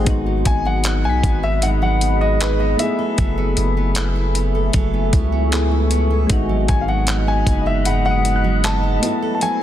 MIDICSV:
0, 0, Header, 1, 9, 480
1, 0, Start_track
1, 0, Tempo, 779221
1, 41, Time_signature, 4, 2, 24, 8
1, 5931, End_track
2, 0, Start_track
2, 0, Title_t, "Synth pluck"
2, 0, Program_c, 0, 84
2, 525, Note_on_c, 0, 90, 81
2, 674, Note_on_c, 0, 95, 53
2, 1161, Note_off_c, 0, 90, 0
2, 1295, Note_off_c, 0, 95, 0
2, 4842, Note_on_c, 0, 83, 76
2, 4995, Note_on_c, 0, 87, 55
2, 5148, Note_on_c, 0, 90, 59
2, 5479, Note_off_c, 0, 83, 0
2, 5616, Note_off_c, 0, 87, 0
2, 5752, Note_off_c, 0, 90, 0
2, 5931, End_track
3, 0, Start_track
3, 0, Title_t, "Ambient pad"
3, 0, Program_c, 1, 92
3, 42, Note_on_c, 1, 75, 71
3, 42, Note_on_c, 1, 78, 70
3, 42, Note_on_c, 1, 83, 85
3, 43, Note_on_c, 1, 68, 77
3, 1705, Note_off_c, 1, 68, 0
3, 1705, Note_off_c, 1, 75, 0
3, 1705, Note_off_c, 1, 78, 0
3, 1705, Note_off_c, 1, 83, 0
3, 1718, Note_on_c, 1, 80, 72
3, 1719, Note_on_c, 1, 76, 73
3, 1720, Note_on_c, 1, 57, 74
3, 1721, Note_on_c, 1, 83, 85
3, 2672, Note_off_c, 1, 83, 0
3, 2680, Note_on_c, 1, 85, 83
3, 3858, Note_off_c, 1, 80, 0
3, 3859, Note_off_c, 1, 57, 0
3, 3859, Note_off_c, 1, 76, 0
3, 3869, Note_off_c, 1, 85, 0
3, 3883, Note_on_c, 1, 56, 75
3, 3883, Note_on_c, 1, 78, 73
3, 3883, Note_on_c, 1, 83, 87
3, 3884, Note_on_c, 1, 75, 73
3, 5545, Note_off_c, 1, 56, 0
3, 5545, Note_off_c, 1, 78, 0
3, 5545, Note_off_c, 1, 83, 0
3, 5546, Note_off_c, 1, 75, 0
3, 5557, Note_on_c, 1, 76, 73
3, 5559, Note_on_c, 1, 69, 82
3, 5559, Note_on_c, 1, 78, 72
3, 5561, Note_on_c, 1, 83, 83
3, 5931, Note_off_c, 1, 69, 0
3, 5931, Note_off_c, 1, 76, 0
3, 5931, Note_off_c, 1, 78, 0
3, 5931, Note_off_c, 1, 83, 0
3, 5931, End_track
4, 0, Start_track
4, 0, Title_t, "Grand piano"
4, 0, Program_c, 2, 0
4, 288, Note_on_c, 2, 80, 101
4, 408, Note_off_c, 2, 80, 0
4, 409, Note_on_c, 2, 78, 95
4, 647, Note_on_c, 2, 80, 93
4, 652, Note_off_c, 2, 78, 0
4, 884, Note_on_c, 2, 76, 98
4, 891, Note_off_c, 2, 80, 0
4, 1003, Note_on_c, 2, 78, 95
4, 1006, Note_off_c, 2, 76, 0
4, 1034, Note_off_c, 2, 78, 0
4, 1125, Note_on_c, 2, 78, 94
4, 1361, Note_on_c, 2, 75, 89
4, 1370, Note_off_c, 2, 78, 0
4, 1483, Note_on_c, 2, 71, 84
4, 1485, Note_off_c, 2, 75, 0
4, 1602, Note_on_c, 2, 75, 83
4, 1606, Note_off_c, 2, 71, 0
4, 1722, Note_on_c, 2, 76, 93
4, 1725, Note_off_c, 2, 75, 0
4, 3617, Note_off_c, 2, 76, 0
4, 4120, Note_on_c, 2, 80, 93
4, 4197, Note_on_c, 2, 77, 66
4, 4200, Note_off_c, 2, 80, 0
4, 4241, Note_off_c, 2, 77, 0
4, 4242, Note_on_c, 2, 78, 89
4, 4485, Note_on_c, 2, 80, 89
4, 4489, Note_off_c, 2, 78, 0
4, 4690, Note_on_c, 2, 75, 60
4, 4700, Note_off_c, 2, 80, 0
4, 4721, Note_off_c, 2, 75, 0
4, 4723, Note_on_c, 2, 76, 89
4, 4842, Note_on_c, 2, 78, 92
4, 4846, Note_off_c, 2, 76, 0
4, 4954, Note_off_c, 2, 78, 0
4, 4963, Note_on_c, 2, 78, 107
4, 5325, Note_on_c, 2, 81, 102
4, 5333, Note_off_c, 2, 78, 0
4, 5748, Note_off_c, 2, 81, 0
4, 5757, Note_on_c, 2, 81, 68
4, 5801, Note_off_c, 2, 81, 0
4, 5806, Note_on_c, 2, 80, 99
4, 5931, Note_off_c, 2, 80, 0
4, 5931, End_track
5, 0, Start_track
5, 0, Title_t, "Synth keys"
5, 0, Program_c, 3, 88
5, 0, Control_c, 3, 64, 127
5, 0, Note_on_c, 3, 68, 61
5, 26, Note_on_c, 3, 56, 72
5, 38, Note_on_c, 3, 59, 68
5, 49, Note_on_c, 3, 63, 68
5, 50, Control_c, 3, 64, 0
5, 61, Note_on_c, 3, 66, 82
5, 150, Note_off_c, 3, 68, 0
5, 156, Control_c, 3, 64, 127
5, 1689, Note_off_c, 3, 56, 0
5, 1695, Note_off_c, 3, 59, 0
5, 1700, Note_off_c, 3, 63, 0
5, 1705, Note_on_c, 3, 57, 61
5, 1707, Note_off_c, 3, 66, 0
5, 1718, Note_on_c, 3, 59, 58
5, 1729, Note_on_c, 3, 64, 59
5, 1730, Control_c, 3, 64, 0
5, 1741, Note_on_c, 3, 68, 71
5, 1828, Control_c, 3, 64, 127
5, 3369, Note_off_c, 3, 57, 0
5, 3375, Note_off_c, 3, 59, 0
5, 3381, Note_off_c, 3, 64, 0
5, 3387, Note_off_c, 3, 68, 0
5, 3394, Note_on_c, 3, 57, 60
5, 3398, Note_on_c, 3, 59, 52
5, 3405, Note_on_c, 3, 64, 53
5, 3411, Note_on_c, 3, 68, 62
5, 3862, Note_on_c, 3, 56, 78
5, 3866, Note_off_c, 3, 59, 0
5, 3874, Note_on_c, 3, 59, 67
5, 3877, Note_off_c, 3, 57, 0
5, 3883, Note_off_c, 3, 64, 0
5, 3885, Note_on_c, 3, 63, 70
5, 3886, Note_off_c, 3, 68, 0
5, 3890, Control_c, 3, 64, 0
5, 3896, Note_on_c, 3, 66, 87
5, 3984, Control_c, 3, 64, 127
5, 5527, Note_off_c, 3, 56, 0
5, 5533, Note_off_c, 3, 59, 0
5, 5539, Note_off_c, 3, 63, 0
5, 5544, Note_off_c, 3, 66, 0
5, 5544, Note_on_c, 3, 57, 66
5, 5556, Note_on_c, 3, 59, 60
5, 5568, Control_c, 3, 64, 0
5, 5568, Note_on_c, 3, 64, 59
5, 5580, Note_on_c, 3, 69, 77
5, 5666, Control_c, 3, 64, 127
5, 5931, Note_off_c, 3, 57, 0
5, 5931, Note_off_c, 3, 59, 0
5, 5931, Note_off_c, 3, 64, 0
5, 5931, Note_off_c, 3, 69, 0
5, 5931, End_track
6, 0, Start_track
6, 0, Title_t, "Steel-string acoustic guitar"
6, 0, Program_c, 4, 25
6, 0, Note_on_c, 4, 54, 61
6, 0, Note_on_c, 4, 57, 59
6, 42, Note_on_c, 4, 44, 88
6, 46, Note_on_c, 4, 63, 70
6, 90, Note_off_c, 4, 57, 0
6, 160, Note_off_c, 4, 54, 0
6, 162, Note_on_c, 4, 54, 58
6, 282, Note_on_c, 4, 59, 59
6, 400, Note_off_c, 4, 54, 0
6, 402, Note_on_c, 4, 54, 61
6, 514, Note_off_c, 4, 63, 0
6, 522, Note_on_c, 4, 63, 66
6, 640, Note_off_c, 4, 59, 0
6, 643, Note_on_c, 4, 59, 61
6, 760, Note_off_c, 4, 54, 0
6, 763, Note_on_c, 4, 54, 62
6, 874, Note_off_c, 4, 63, 0
6, 881, Note_on_c, 4, 63, 62
6, 994, Note_off_c, 4, 44, 0
6, 997, Note_off_c, 4, 63, 0
6, 1001, Note_on_c, 4, 44, 86
6, 1005, Note_on_c, 4, 63, 71
6, 1117, Note_off_c, 4, 54, 0
6, 1120, Note_on_c, 4, 54, 62
6, 1239, Note_off_c, 4, 59, 0
6, 1241, Note_on_c, 4, 59, 62
6, 1360, Note_off_c, 4, 54, 0
6, 1363, Note_on_c, 4, 54, 57
6, 1473, Note_off_c, 4, 63, 0
6, 1481, Note_on_c, 4, 63, 69
6, 1599, Note_off_c, 4, 59, 0
6, 1602, Note_on_c, 4, 59, 60
6, 1718, Note_off_c, 4, 54, 0
6, 1721, Note_on_c, 4, 54, 80
6, 1769, Note_off_c, 4, 44, 0
6, 1769, Note_off_c, 4, 63, 0
6, 1840, Note_on_c, 4, 69, 62
6, 1858, Note_off_c, 4, 59, 0
6, 1957, Note_off_c, 4, 69, 0
6, 1958, Note_off_c, 4, 54, 0
6, 1960, Note_on_c, 4, 54, 83
6, 1964, Note_on_c, 4, 69, 71
6, 2080, Note_on_c, 4, 59, 62
6, 2201, Note_on_c, 4, 64, 60
6, 2319, Note_off_c, 4, 59, 0
6, 2322, Note_on_c, 4, 59, 62
6, 2434, Note_off_c, 4, 69, 0
6, 2441, Note_on_c, 4, 69, 65
6, 2554, Note_off_c, 4, 64, 0
6, 2561, Note_on_c, 4, 64, 60
6, 2680, Note_off_c, 4, 59, 0
6, 2683, Note_on_c, 4, 59, 61
6, 2794, Note_off_c, 4, 69, 0
6, 2801, Note_on_c, 4, 69, 63
6, 2916, Note_off_c, 4, 69, 0
6, 2918, Note_off_c, 4, 54, 0
6, 2920, Note_on_c, 4, 54, 86
6, 2924, Note_on_c, 4, 69, 73
6, 3038, Note_off_c, 4, 59, 0
6, 3041, Note_on_c, 4, 59, 62
6, 3152, Note_off_c, 4, 64, 0
6, 3160, Note_on_c, 4, 64, 66
6, 3277, Note_off_c, 4, 59, 0
6, 3279, Note_on_c, 4, 59, 63
6, 3391, Note_off_c, 4, 69, 0
6, 3399, Note_on_c, 4, 69, 70
6, 3512, Note_off_c, 4, 64, 0
6, 3519, Note_on_c, 4, 64, 61
6, 3636, Note_off_c, 4, 59, 0
6, 3639, Note_on_c, 4, 59, 63
6, 3753, Note_off_c, 4, 69, 0
6, 3760, Note_on_c, 4, 69, 67
6, 3879, Note_on_c, 4, 44, 87
6, 3880, Note_off_c, 4, 64, 0
6, 3883, Note_on_c, 4, 63, 72
6, 3929, Note_off_c, 4, 69, 0
6, 3997, Note_off_c, 4, 54, 0
6, 3999, Note_on_c, 4, 54, 63
6, 4116, Note_off_c, 4, 59, 0
6, 4119, Note_on_c, 4, 59, 59
6, 4237, Note_off_c, 4, 54, 0
6, 4239, Note_on_c, 4, 54, 61
6, 4352, Note_off_c, 4, 63, 0
6, 4359, Note_on_c, 4, 63, 72
6, 4477, Note_off_c, 4, 59, 0
6, 4479, Note_on_c, 4, 59, 61
6, 4595, Note_off_c, 4, 54, 0
6, 4598, Note_on_c, 4, 54, 65
6, 4711, Note_off_c, 4, 63, 0
6, 4718, Note_on_c, 4, 63, 64
6, 4831, Note_off_c, 4, 44, 0
6, 4835, Note_off_c, 4, 63, 0
6, 4838, Note_on_c, 4, 44, 89
6, 4842, Note_on_c, 4, 63, 76
6, 4956, Note_off_c, 4, 54, 0
6, 4959, Note_on_c, 4, 54, 63
6, 5078, Note_off_c, 4, 59, 0
6, 5080, Note_on_c, 4, 59, 64
6, 5198, Note_off_c, 4, 54, 0
6, 5200, Note_on_c, 4, 54, 60
6, 5314, Note_off_c, 4, 63, 0
6, 5321, Note_on_c, 4, 63, 71
6, 5439, Note_off_c, 4, 59, 0
6, 5442, Note_on_c, 4, 59, 63
6, 5558, Note_off_c, 4, 54, 0
6, 5560, Note_on_c, 4, 54, 81
6, 5608, Note_off_c, 4, 44, 0
6, 5609, Note_off_c, 4, 63, 0
6, 5682, Note_on_c, 4, 69, 67
6, 5700, Note_off_c, 4, 59, 0
6, 5799, Note_off_c, 4, 54, 0
6, 5801, Note_on_c, 4, 54, 87
6, 5803, Note_off_c, 4, 69, 0
6, 5805, Note_on_c, 4, 69, 74
6, 5931, Note_off_c, 4, 54, 0
6, 5931, Note_off_c, 4, 69, 0
6, 5931, End_track
7, 0, Start_track
7, 0, Title_t, "808-style bass"
7, 0, Program_c, 5, 38
7, 42, Note_on_c, 5, 32, 111
7, 272, Note_off_c, 5, 32, 0
7, 282, Note_on_c, 5, 32, 106
7, 643, Note_on_c, 5, 35, 95
7, 653, Note_off_c, 5, 32, 0
7, 756, Note_off_c, 5, 35, 0
7, 761, Note_on_c, 5, 32, 108
7, 1697, Note_off_c, 5, 32, 0
7, 1961, Note_on_c, 5, 30, 111
7, 2192, Note_off_c, 5, 30, 0
7, 2201, Note_on_c, 5, 30, 103
7, 2897, Note_off_c, 5, 30, 0
7, 2921, Note_on_c, 5, 30, 108
7, 3152, Note_off_c, 5, 30, 0
7, 3161, Note_on_c, 5, 37, 94
7, 3856, Note_off_c, 5, 37, 0
7, 3880, Note_on_c, 5, 32, 115
7, 4111, Note_off_c, 5, 32, 0
7, 4120, Note_on_c, 5, 32, 99
7, 4582, Note_off_c, 5, 32, 0
7, 4599, Note_on_c, 5, 30, 103
7, 5536, Note_off_c, 5, 30, 0
7, 5931, End_track
8, 0, Start_track
8, 0, Title_t, "Swell"
8, 0, Program_c, 6, 103
8, 5800, Note_on_c, 6, 60, 80
8, 5931, Note_off_c, 6, 60, 0
8, 5931, End_track
9, 0, Start_track
9, 0, Title_t, "Drums"
9, 40, Note_on_c, 9, 42, 73
9, 42, Note_on_c, 9, 36, 101
9, 101, Note_off_c, 9, 42, 0
9, 103, Note_off_c, 9, 36, 0
9, 280, Note_on_c, 9, 42, 67
9, 281, Note_on_c, 9, 36, 93
9, 341, Note_off_c, 9, 42, 0
9, 343, Note_off_c, 9, 36, 0
9, 515, Note_on_c, 9, 42, 80
9, 525, Note_on_c, 9, 39, 111
9, 577, Note_off_c, 9, 42, 0
9, 587, Note_off_c, 9, 39, 0
9, 761, Note_on_c, 9, 36, 82
9, 763, Note_on_c, 9, 42, 59
9, 822, Note_off_c, 9, 36, 0
9, 824, Note_off_c, 9, 42, 0
9, 998, Note_on_c, 9, 42, 71
9, 1060, Note_off_c, 9, 42, 0
9, 1240, Note_on_c, 9, 42, 69
9, 1302, Note_off_c, 9, 42, 0
9, 1482, Note_on_c, 9, 42, 66
9, 1488, Note_on_c, 9, 39, 121
9, 1543, Note_off_c, 9, 42, 0
9, 1550, Note_off_c, 9, 39, 0
9, 1720, Note_on_c, 9, 42, 73
9, 1782, Note_off_c, 9, 42, 0
9, 1959, Note_on_c, 9, 42, 74
9, 1961, Note_on_c, 9, 36, 103
9, 2020, Note_off_c, 9, 42, 0
9, 2022, Note_off_c, 9, 36, 0
9, 2198, Note_on_c, 9, 42, 67
9, 2259, Note_off_c, 9, 42, 0
9, 2433, Note_on_c, 9, 42, 77
9, 2443, Note_on_c, 9, 39, 112
9, 2495, Note_off_c, 9, 42, 0
9, 2505, Note_off_c, 9, 39, 0
9, 2680, Note_on_c, 9, 42, 60
9, 2742, Note_off_c, 9, 42, 0
9, 2916, Note_on_c, 9, 42, 71
9, 2920, Note_on_c, 9, 36, 101
9, 2978, Note_off_c, 9, 42, 0
9, 2982, Note_off_c, 9, 36, 0
9, 3160, Note_on_c, 9, 36, 91
9, 3160, Note_on_c, 9, 42, 68
9, 3221, Note_off_c, 9, 42, 0
9, 3222, Note_off_c, 9, 36, 0
9, 3401, Note_on_c, 9, 42, 69
9, 3407, Note_on_c, 9, 39, 127
9, 3462, Note_off_c, 9, 42, 0
9, 3469, Note_off_c, 9, 39, 0
9, 3639, Note_on_c, 9, 42, 78
9, 3700, Note_off_c, 9, 42, 0
9, 3878, Note_on_c, 9, 42, 68
9, 3880, Note_on_c, 9, 36, 98
9, 3940, Note_off_c, 9, 42, 0
9, 3941, Note_off_c, 9, 36, 0
9, 4118, Note_on_c, 9, 42, 63
9, 4119, Note_on_c, 9, 36, 93
9, 4179, Note_off_c, 9, 42, 0
9, 4181, Note_off_c, 9, 36, 0
9, 4354, Note_on_c, 9, 42, 76
9, 4364, Note_on_c, 9, 39, 110
9, 4415, Note_off_c, 9, 42, 0
9, 4425, Note_off_c, 9, 39, 0
9, 4599, Note_on_c, 9, 36, 81
9, 4601, Note_on_c, 9, 42, 66
9, 4661, Note_off_c, 9, 36, 0
9, 4662, Note_off_c, 9, 42, 0
9, 4838, Note_on_c, 9, 42, 71
9, 4900, Note_off_c, 9, 42, 0
9, 5082, Note_on_c, 9, 42, 67
9, 5143, Note_off_c, 9, 42, 0
9, 5321, Note_on_c, 9, 42, 73
9, 5327, Note_on_c, 9, 39, 127
9, 5383, Note_off_c, 9, 42, 0
9, 5389, Note_off_c, 9, 39, 0
9, 5561, Note_on_c, 9, 42, 72
9, 5623, Note_off_c, 9, 42, 0
9, 5799, Note_on_c, 9, 42, 71
9, 5860, Note_off_c, 9, 42, 0
9, 5931, End_track
0, 0, End_of_file